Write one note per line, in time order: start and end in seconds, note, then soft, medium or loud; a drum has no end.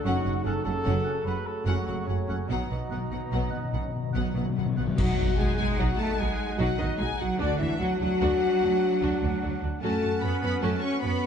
0.03 0.14 F#1 medium
0.03 0.11 F#2 medium
0.03 2.45 C#3 medium
0.03 4.73 F#3 medium
0.03 0.24 F#3 medium
0.03 0.24 C#4 medium
0.03 0.65 D#4 medium
0.03 0.44 F#4 loud
0.03 0.44 F#5 medium
0.03 0.24 F#5 medium
0.24 0.34 F#1 medium
0.24 0.32 F#2 medium
0.24 0.34 F#3 soft
0.24 0.33 C#4 medium
0.24 0.33 F#5 medium
0.44 0.54 F#1 medium
0.44 0.53 F#2 medium
0.44 0.53 F#3 medium
0.44 0.53 C#4 medium
0.44 0.64 A4 loud
0.44 0.53 F#5 medium
0.44 0.64 A5 medium
0.64 0.74 F#1 medium
0.64 0.73 F#2 medium
0.64 0.74 F#3 medium
0.64 0.73 C#4 medium
0.64 0.85 C#4 medium
0.64 1.25 A4 loud
0.64 0.73 F#5 medium
0.64 1.25 A5 medium
0.84 0.94 F#1 medium
0.84 0.93 F#2 medium
0.84 1.07 B3 medium
0.84 1.04 C#4 medium
0.84 1.04 F#5 medium
0.88 1.06 F#3 medium
1.04 1.15 C#4 medium
1.04 1.13 C#4 medium
1.04 1.12 F#5 medium
1.25 1.34 F#1 medium
1.25 1.34 F#2 medium
1.25 1.34 F#3 medium
1.25 2.47 A3 medium
1.25 1.35 C#4 medium
1.25 1.48 B4 loud
1.25 1.35 F#5 medium
1.25 1.46 B5 medium
1.46 1.66 A4 medium
1.46 1.67 A5 medium
1.65 1.75 F#1 medium
1.65 1.73 F#2 medium
1.65 1.85 F#3 medium
1.65 1.74 C#4 medium
1.65 1.84 C#4 medium
1.65 1.86 F#4 medium
1.65 1.83 F#5 medium
1.65 1.74 F#5 medium
1.65 1.86 F#5 medium
1.85 1.96 F#1 medium
1.85 1.95 F#2 medium
1.85 1.95 F#3 medium
1.85 1.93 C#4 medium
1.85 2.07 F#4 medium
1.85 2.06 F#5 medium
1.85 1.95 F#5 medium
2.05 2.15 F#2 medium
2.05 2.17 F#3 medium
2.05 2.13 C#4 medium
2.05 2.48 C#4 medium
2.05 2.49 C#5 medium
2.09 2.17 F#1 medium
2.09 2.17 F#5 medium
2.27 2.37 F#1 soft
2.27 2.36 F#2 soft
2.27 2.37 F#3 medium
2.27 2.35 C#4 medium
2.27 2.36 C#4 medium
2.27 2.36 F#5 medium
2.48 2.57 B1 medium
2.48 2.57 B2 medium
2.48 4.72 B2 medium
2.48 2.57 B2 soft
2.48 2.69 F#3 medium
2.48 3.06 B3 medium
2.48 2.69 B3 medium
2.48 4.73 D#4 medium
2.48 4.77 D#5 medium
2.48 2.69 F#5 medium
2.58 2.65 B2 soft
2.66 2.73 B2 soft
2.66 2.78 B3 soft
2.70 2.78 B1 soft
2.70 2.78 B2 soft
2.70 2.80 B2 soft
2.70 2.79 F#3 soft
2.70 2.79 F#5 soft
2.81 2.87 B2 soft
2.89 2.99 B1 soft
2.89 2.95 B2 soft
2.89 2.98 B2 medium
2.89 3.00 F#3 soft
2.89 2.99 B3 medium
2.89 3.00 B3 soft
2.89 2.98 F#5 medium
2.89 2.99 F#5 soft
2.96 3.03 B2 soft
3.04 3.10 B2 soft
3.11 3.20 B1 soft
3.11 3.20 B2 soft
3.11 3.20 F#3 soft
3.11 3.20 B3 soft
3.11 3.50 B3 medium
3.11 3.19 F#5 soft
3.19 3.25 B2 soft
3.26 3.33 B2 soft
3.32 3.40 B1 medium
3.32 3.40 B2 medium
3.32 3.39 B2 soft
3.32 3.51 F#3 medium
3.32 3.52 B3 medium
3.32 3.51 F#5 medium
3.41 3.47 B2 soft
3.49 3.56 B2 soft
3.49 3.60 B3 medium
3.49 3.59 F#5 medium
3.53 3.72 C#4 medium
3.57 3.63 B2 soft
3.64 3.72 B2 medium
3.73 3.81 B1 soft
3.73 3.78 B2 medium
3.73 3.81 B2 soft
3.73 3.82 F#3 medium
3.73 3.81 B3 soft
3.73 3.94 C#4 medium
3.73 3.82 F#5 medium
3.88 3.95 B2 medium
3.88 4.13 B3 medium
3.96 4.02 B2 medium
4.03 4.09 B2 medium
4.10 4.18 B2 medium
4.10 4.34 D#4 medium
4.10 4.21 F#5 medium
4.15 4.23 B1 medium
4.15 4.23 B2 medium
4.15 4.34 F#3 medium
4.15 4.23 B3 medium
4.15 4.35 B3 medium
4.15 4.34 F#5 medium
4.19 4.25 B2 medium
4.26 4.32 B2 medium
4.34 4.44 B1 soft
4.34 4.41 B2 medium
4.34 4.42 B2 medium
4.34 4.45 B3 soft
4.34 4.76 C#4 medium
4.34 4.45 F#5 soft
4.38 4.46 F#3 medium
4.42 4.48 B2 medium
4.50 4.56 B2 medium
4.56 4.65 B1 soft
4.56 4.64 B2 soft
4.56 4.64 B2 medium
4.56 4.67 F#3 soft
4.56 4.65 B3 medium
4.56 4.66 F#5 medium
4.65 4.71 B2 medium
4.72 4.79 B2 medium
4.77 4.86 B1 soft
4.77 4.85 B2 soft
4.77 4.86 B2 medium
4.77 4.86 F#3 medium
4.77 4.97 B3 medium
4.77 4.85 B3 medium
4.77 4.87 B3 medium
4.77 4.84 F#5 medium
4.77 4.85 F#5 medium
4.88 4.95 B2 loud
4.96 5.06 B1 loud
4.96 5.54 B2 loud
4.96 9.77 F#3 medium
4.96 5.35 F#3 medium
4.96 7.35 D#4 medium
4.96 5.16 D#4 medium
4.96 5.34 F#4 loud
4.96 5.16 F#4 medium
4.96 5.35 F#5 medium
4.96 9.78 F#5 medium
4.96 5.36 F#5 medium
4.96 6.76 F#5 medium
4.96 concert bass drum medium
4.96 crash medium
5.00 6.77 D#4 medium
5.19 5.27 B1 medium
5.19 5.27 D#4 medium
5.19 5.27 F#4 medium
5.37 5.47 B1 medium
5.37 5.57 G#3 medium
5.37 5.46 D#4 medium
5.37 5.47 F#4 medium
5.37 5.57 G#4 loud
5.37 5.56 G#5 medium
5.37 5.58 G#5 medium
5.57 5.68 B1 medium
5.57 5.78 G#3 loud
5.57 5.66 D#4 medium
5.57 5.65 F#4 medium
5.57 5.78 G#4 loud
5.57 5.65 G#5 loud
5.57 5.78 G#5 loud
5.57 5.65 G#5 loud
5.77 5.87 B1 medium
5.77 5.98 F#3 medium
5.77 5.98 D#4 medium
5.77 5.98 F#4 medium
5.77 5.98 F#5 medium
5.98 6.18 A3 medium
5.98 6.19 A4 loud
5.98 6.18 A5 medium
5.98 6.19 A5 medium
6.17 6.28 B1 medium
6.17 6.58 G#3 medium
6.17 6.27 D#4 medium
6.17 6.27 F#4 medium
6.17 6.60 G#4 medium
6.17 6.57 G#5 medium
6.17 6.59 G#5 medium
6.58 6.67 B1 loud
6.58 6.66 F#3 medium
6.58 6.77 D#4 medium
6.58 6.77 F#4 medium
6.58 6.79 F#4 loud
6.58 6.79 F#5 medium
6.58 6.80 F#5 medium
6.78 6.87 B1 medium
6.78 6.86 D#3 medium
6.78 6.99 D#4 loud
6.78 6.87 D#4 medium
6.78 7.42 D#4 medium
6.78 6.88 F#4 medium
6.78 6.86 D#5 medium
6.78 6.99 D#5 medium
6.78 6.86 D#5 medium
6.78 7.38 F#5 medium
6.98 7.08 B1 medium
6.98 7.06 G#3 medium
6.98 7.08 D#4 medium
6.98 7.08 F#4 medium
6.98 7.09 G#4 medium
6.98 7.19 G#5 medium
7.19 7.28 B1 medium
7.19 7.39 F#3 medium
7.19 7.27 D#4 medium
7.19 7.27 F#4 medium
7.19 7.39 F#4 medium
7.19 7.40 F#5 medium
7.19 7.25 F#5 medium
7.19 7.40 F#5 medium
7.37 7.47 D2 medium
7.37 7.59 D3 medium
7.37 7.59 D4 loud
7.37 7.58 D4 medium
7.37 8.01 D4 medium
7.37 9.78 D4 medium
7.37 7.58 F#4 medium
7.37 7.58 D5 medium
7.37 7.59 D5 medium
7.37 7.60 D5 medium
7.37 7.99 F#5 medium
7.58 7.68 D2 medium
7.58 7.80 E3 medium
7.58 7.68 D4 medium
7.58 7.80 E4 medium
7.58 7.67 F#4 medium
7.58 7.66 E5 medium
7.58 7.80 E5 medium
7.78 7.88 D2 medium
7.78 7.98 F#3 medium
7.78 7.88 D4 medium
7.78 7.88 F#4 medium
7.78 8.00 F#4 loud
7.78 7.86 F#5 medium
7.78 7.99 F#5 medium
7.78 8.00 F#5 medium
7.99 8.08 D2 medium
7.99 9.57 F#3 medium
7.99 8.08 D4 medium
7.99 9.78 D4 medium
7.99 8.08 F#4 medium
7.99 9.58 F#4 loud
7.99 9.77 F#5 medium
7.99 9.58 F#5 medium
7.99 9.59 F#5 medium
8.21 8.29 D2 medium
8.21 8.39 D4 medium
8.21 8.39 F#4 medium
8.61 8.69 D2 medium
8.61 8.69 D4 medium
8.61 8.69 F#4 medium
9.01 9.10 D2 medium
9.01 9.20 D4 medium
9.01 9.20 F#4 medium
9.22 9.30 D2 medium
9.22 9.30 D4 medium
9.22 9.30 F#4 medium
9.42 9.50 D2 medium
9.42 9.50 D4 medium
9.42 9.50 F#4 medium
9.63 9.70 D2 medium
9.63 9.70 D4 medium
9.63 9.71 F#4 medium
9.80 9.90 F#2 medium
9.80 11.26 F#3 medium
9.80 10.19 A3 medium
9.80 11.26 C#4 medium
9.80 10.01 C#4 medium
9.80 10.00 F#4 medium
9.80 10.18 A4 loud
9.80 11.26 F#5 medium
9.80 10.19 A5 medium
10.02 10.11 F#2 medium
10.02 10.11 C#4 soft
10.02 10.10 F#4 medium
10.21 10.30 F#2 medium
10.21 10.41 B3 medium
10.21 10.30 C#4 medium
10.21 10.30 F#4 medium
10.21 10.41 B4 loud
10.21 10.39 B5 medium
10.21 10.40 B5 medium
10.21 10.41 B5 medium
10.41 10.50 F#2 medium
10.41 10.61 B3 medium
10.41 10.50 C#4 medium
10.41 10.50 F#4 medium
10.41 10.62 B4 loud
10.41 10.61 B5 medium
10.41 10.61 B5 loud
10.41 10.50 B5 loud
10.61 10.70 F#2 medium
10.61 10.81 A3 medium
10.61 10.80 C#4 medium
10.61 10.81 F#4 medium
10.61 10.82 A4 medium
10.61 10.81 A5 medium
10.61 10.82 A5 medium
10.81 11.01 C#4 medium
10.81 11.02 C#5 loud
10.81 11.01 C#6 medium
10.81 11.02 C#6 medium
11.01 11.11 F#2 medium
11.01 11.26 B3 medium
11.01 11.10 C#4 medium
11.01 11.10 F#4 medium
11.01 11.26 B4 loud
11.01 11.26 B5 medium